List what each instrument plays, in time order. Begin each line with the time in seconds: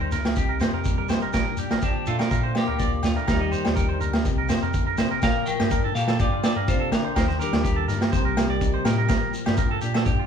Already playing: clean electric guitar D#3 A#3 D#4
0.01 clean electric guitar C5
0.12 tine electric piano C#2, clean electric guitar D3 A#4, snare, shekere
0.24 snare, low agogo, shekere
0.36 tine electric piano C2, clean electric guitar C3 D#4 G4, kick, shekere
0.49 clean electric guitar A#4
0.60 clean electric guitar A#3 C5, snare, low agogo, shekere
0.73 tine electric piano F2, clean electric guitar A#4
0.84 clean electric guitar G3, kick, shekere
0.98 clean electric guitar A#4
1.09 tine electric piano A#1, clean electric guitar D#4 C5, snare, low agogo, shekere
1.22 clean electric guitar A#4, shekere
1.33 tine electric piano A#1, clean electric guitar A#2 D4 A#4, kick, snare, low agogo, shekere
1.47 clean electric guitar F4
1.57 clean electric guitar D4 G4, shekere
1.71 tine electric piano A#1, clean electric guitar A#4, snare, low agogo
1.82 clean electric guitar F3 D4 G4, kick, shekere
2.06 tine electric piano A#2, clean electric guitar A3 D4 F4 A4, shekere
2.19 clean electric guitar A#4, snare, low agogo, shekere
2.31 clean electric guitar A#2 D4 A#4, tine electric piano A#2, kick, shekere
2.43 clean electric guitar C5
2.55 clean electric guitar A#3 F4 G4, snare, low agogo
2.67 tine electric piano D2, clean electric guitar A#4
2.79 clean electric guitar F3 D5, kick, shekere
3.03 tine electric piano D2, clean electric guitar A3 D4 F4, snare, low agogo, shekere
3.16 clean electric guitar A#4, shekere
3.27 tine electric piano D#2, clean electric guitar D#3 G3 A#3 D#4 G4 A#4, kick, snare, low agogo, shekere
3.40 clean electric guitar D#5
3.52 clean electric guitar A#3 C5, shekere
3.65 tine electric piano D#2, snare, low agogo, shekere
3.76 clean electric guitar D#3 A#4, kick, shekere
3.89 clean electric guitar C5
4.00 tine electric piano D2, clean electric guitar D3 A#4, shekere
4.13 snare, low agogo, shekere
4.24 tine electric piano C2, clean electric guitar C3 D#4, muted clean electric guitar stroke, kick, shekere
4.38 clean electric guitar A#4
4.49 clean electric guitar A#3 C5, snare, low agogo, shekere
4.62 tine electric piano F2, clean electric guitar A#4, shekere
4.74 clean electric guitar D3, kick, shekere
4.87 clean electric guitar A#4
4.98 tine electric piano A#1, clean electric guitar C3 C5, snare, low agogo, shekere
5.10 clean electric guitar A#4, shekere
5.22 tine electric piano A#1, clean electric guitar A#2 A#4 F5, kick, snare, low agogo, shekere
5.46 clean electric guitar F3 A#4 G5, shekere
5.60 tine electric piano G2, clean electric guitar G4, snare, low agogo
5.71 clean electric guitar D4 A#4, kick, shekere
5.84 clean electric guitar F4 A4
5.95 tine electric piano A#2, clean electric guitar G4 A4 F5, muted clean electric guitar stroke, snare, shekere
6.08 clean electric guitar A4, snare, low agogo
6.19 tine electric piano G2, clean electric guitar A#2 F4 G4 D5, kick, shekere
6.32 clean electric guitar F4
6.44 clean electric guitar D4 F4 A4 D5, snare, low agogo, shekere
6.56 tine electric piano G2, clean electric guitar A#4
6.68 clean electric guitar C3 F4 C5, kick, shekere
6.80 clean electric guitar A4
6.92 tine electric piano A#1, clean electric guitar D3 D4 A#4, muted clean electric guitar stroke, snare, low agogo, shekere
7.04 clean electric guitar C5
7.16 tine electric piano D#2, clean electric guitar D#3 D#4 A#4 C5, kick, snare, low agogo, shekere
7.28 clean electric guitar C5, snare
7.39 clean electric guitar G3 D4 A#4, shekere
7.53 tine electric piano D#2, snare, low agogo
7.64 clean electric guitar D#3 G4, kick, shekere
7.76 clean electric guitar A4
7.88 tine electric piano G2, clean electric guitar D3 A#4, snare, shekere
8.01 snare, low agogo
8.12 tine electric piano C2, clean electric guitar C3 G3 A#3 A#4 C5, muted clean electric guitar stroke, kick, shekere
8.25 clean electric guitar A#4
8.37 clean electric guitar G3, snare, low agogo, shekere
8.49 tine electric piano C2, clean electric guitar D5
8.61 clean electric guitar D#4, kick, shekere
8.74 clean electric guitar C5
8.85 tine electric piano A2, clean electric guitar A#3 A#4, snare, low agogo, shekere
8.98 clean electric guitar A#4
9.09 tine electric piano A#1, clean electric guitar A#2 A#4, kick, snare, low agogo, shekere
9.33 clean electric guitar F3, shekere
9.46 tine electric piano G2, clean electric guitar G4, snare, low agogo
9.57 clean electric guitar F4 A#4, kick, shekere
9.71 clean electric guitar A4
9.82 tine electric piano A#2, clean electric guitar D4 G4, shekere
9.94 clean electric guitar A4, snare, low agogo
10.05 tine electric piano G2, clean electric guitar A#2 G4, kick, shekere
10.19 clean electric guitar F4